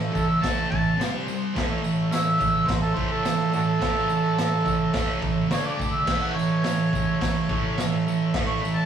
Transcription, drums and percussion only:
0.15 kick medium
0.15 tambourine medium
0.44 kick loud
0.44 snare loud
0.44 open hi-hat medium
0.44 tambourine medium
0.72 kick loud
1.00 snare loud
1.00 open hi-hat medium
1.00 tambourine loud
1.28 tambourine medium
1.56 kick loud
1.56 snare loud
1.56 open hi-hat medium
1.56 tambourine soft
1.84 tambourine medium
2.12 snare loud
2.12 open hi-hat medium
2.12 tambourine loud
2.41 kick medium
2.41 tambourine medium
2.68 kick loud
2.68 snare loud
2.68 open hi-hat medium
2.68 tambourine medium
2.97 kick medium
3.25 snare loud
3.25 open hi-hat medium
3.25 tambourine medium
3.53 tambourine medium
3.81 kick loud
3.81 snare loud
3.81 open hi-hat medium
3.81 tambourine soft
4.09 tambourine medium
4.38 snare loud
4.38 open hi-hat medium
4.38 tambourine medium
4.66 kick medium
4.66 tambourine medium
4.93 kick loud
4.93 snare loud
4.93 open hi-hat medium
4.93 tambourine medium
5.22 kick medium
5.22 tambourine soft
5.50 snare loud
5.50 open hi-hat medium
5.50 tambourine medium
5.79 kick medium
5.79 tambourine medium
6.07 kick loud
6.07 snare loud
6.07 crash loud
6.07 tambourine soft
6.39 tambourine medium
6.63 snare loud
6.63 open hi-hat medium
6.63 tambourine medium
6.93 kick medium
6.93 tambourine medium
7.21 kick loud
7.21 snare loud
7.21 open hi-hat medium
7.21 tambourine medium
7.49 kick loud
7.77 snare loud
7.77 open hi-hat medium
7.77 tambourine loud
8.08 tambourine medium
8.34 kick loud
8.34 snare loud
8.34 open hi-hat medium
8.34 tambourine soft
8.65 tambourine medium

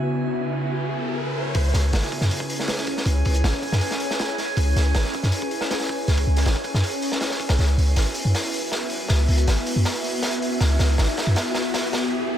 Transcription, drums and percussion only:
1.55 kick loud
1.55 open hi-hat medium
1.74 snare soft
1.74 open hi-hat medium
1.93 snare loud
1.93 open hi-hat medium
2.02 snare soft
2.12 kick medium
2.12 open hi-hat medium
2.21 snare soft
2.31 open hi-hat medium
2.40 kick medium
2.50 open hi-hat medium
2.59 snare soft
2.68 snare loud
2.68 open hi-hat medium
2.78 snare soft
2.87 kick medium
2.87 open hi-hat medium
2.97 snare soft
3.06 kick loud
3.06 open hi-hat medium
3.25 kick medium
3.25 open hi-hat medium
3.34 closed hi-hat soft
3.44 snare loud
3.44 open hi-hat medium
3.53 kick medium
3.63 kick medium
3.63 open hi-hat medium
3.72 snare medium
3.81 open hi-hat medium
3.91 snare soft
4.00 open hi-hat medium
4.11 snare medium
4.19 snare loud
4.19 open hi-hat medium
4.29 closed hi-hat soft
4.38 snare soft
4.38 open hi-hat medium
4.57 kick medium
4.57 open hi-hat medium
4.76 snare soft
4.76 open hi-hat medium
4.95 snare loud
4.95 open hi-hat medium
5.04 snare soft
5.13 kick medium
5.13 open hi-hat medium
5.23 snare soft
5.32 open hi-hat medium
5.42 kick medium
5.51 open hi-hat medium
5.61 snare medium
5.71 snare loud
5.71 open hi-hat medium
5.80 snare medium
5.89 kick loud
5.89 open hi-hat medium
6.08 snare soft
6.08 open hi-hat medium
6.17 kick loud
6.17 open hi-hat medium
6.36 snare soft
6.36 open hi-hat medium
6.46 snare loud
6.46 open hi-hat medium
6.56 kick medium
6.64 kick medium
6.64 open hi-hat medium
6.74 snare soft
6.84 open hi-hat medium
7.02 open hi-hat medium
7.12 snare medium
7.21 snare medium
7.21 open hi-hat medium
7.30 snare soft
7.40 kick medium
7.40 open hi-hat medium
7.49 snare loud
7.49 open hi-hat medium
7.59 snare medium
7.59 open hi-hat medium
7.78 open hi-hat medium
7.96 snare soft
7.96 open hi-hat medium
8.14 open hi-hat medium
8.35 snare medium
8.35 open hi-hat medium
8.54 open hi-hat medium
8.72 snare medium
8.72 open hi-hat medium
8.90 open hi-hat medium
9.08 snare medium
9.08 open hi-hat medium
9.28 open hi-hat medium
9.38 closed hi-hat soft
9.47 snare medium
9.47 open hi-hat medium
9.66 open hi-hat medium
9.85 snare medium
9.85 open hi-hat medium
10.04 open hi-hat medium
10.23 snare medium
10.23 open hi-hat medium
10.33 closed hi-hat soft
10.42 open hi-hat medium
10.61 snare medium
10.61 open hi-hat medium
10.79 snare medium
10.79 open hi-hat medium
10.98 snare medium
10.98 open hi-hat medium
11.17 snare medium
11.17 open hi-hat medium
11.36 snare medium
11.36 open hi-hat medium
11.55 snare medium
11.55 open hi-hat medium
11.74 snare medium
11.74 open hi-hat medium
11.93 snare medium
11.93 open hi-hat medium

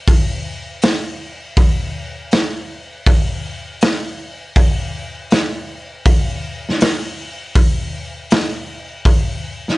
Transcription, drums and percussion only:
0.07 kick loud
0.07 open hi-hat soft
0.82 snare loud
0.82 open hi-hat medium
1.57 kick loud
1.57 open hi-hat medium
2.31 snare medium
2.31 open hi-hat soft
3.06 kick loud
3.06 open hi-hat soft
3.81 snare loud
3.81 open hi-hat soft
4.56 kick loud
4.56 open hi-hat medium
5.31 snare medium
5.31 open hi-hat soft
6.05 kick loud
6.05 open hi-hat soft
6.69 snare soft
6.80 snare loud
6.80 open hi-hat medium
7.55 kick loud
7.55 open hi-hat medium
8.30 snare loud
8.30 open hi-hat soft
9.05 kick loud
9.05 open hi-hat soft
9.68 snare soft

